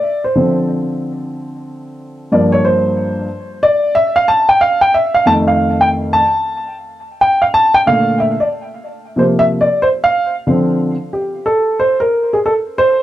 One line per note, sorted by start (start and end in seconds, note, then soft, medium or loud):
0.00 0.22 D5 medium
0.24 0.55 C5 medium
0.35 2.28 D3 soft
0.35 2.28 F3 soft
0.35 2.28 C4 medium
2.32 3.26 G2 medium
2.32 3.26 F3 medium
2.32 3.27 A#3 medium
2.32 2.53 D5 medium
2.52 2.65 C#5 medium
2.65 3.66 C5 medium
3.63 3.93 D5 loud
3.95 4.16 E5 loud
4.16 4.28 F5 loud
4.28 4.49 A5 loud
4.49 4.60 G5 medium
4.61 4.82 F5 loud
4.81 4.94 G5 loud
4.94 5.13 E5 loud
5.14 5.25 F5 loud
5.26 6.20 F2 medium
5.26 6.20 D#3 medium
5.26 6.20 A3 medium
5.26 5.32 A5 loud
5.48 5.80 F5 medium
5.81 5.88 G5 medium
6.13 6.73 A5 medium
7.21 7.42 G5 medium
7.42 7.47 F5 medium
7.54 7.75 A5 loud
7.74 7.79 G5 loud
7.86 8.33 A#2 medium
7.86 8.33 D3 soft
7.86 8.33 A3 medium
7.86 8.17 F5 loud
8.20 8.41 E5 medium
8.40 8.47 D5 medium
9.16 9.63 C3 medium
9.16 9.63 F3 soft
9.16 9.64 A#3 medium
9.16 9.24 C5 medium
9.39 9.44 E5 loud
9.61 9.83 D5 medium
9.82 9.87 C5 medium
10.04 10.34 F5 loud
10.47 10.94 D3 medium
10.47 10.94 F3 soft
10.47 10.94 C4 medium
11.13 11.43 G4 medium
11.46 11.79 A4 medium
11.80 12.00 C5 medium
12.00 12.33 A#4 medium
12.33 12.38 G#4 medium
12.46 12.53 A4 medium
12.78 13.03 C5 loud